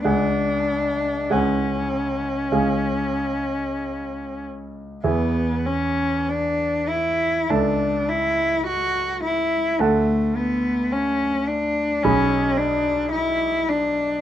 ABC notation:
X:1
M:4/4
L:1/8
Q:1/4=50
K:C#phr
V:1 name="Grand piano"
[C,,Gfg]2 [C,,Gfg]2 [C,,G^eg]4 | [E,,Geg]4 [C,,Aea]4 | [D,,Afa]4 [B,,,Ggb]4 |]
V:2 name="Cello"
D2 C4- C z | B, C D E D E F E | A, B, C D C D E D |]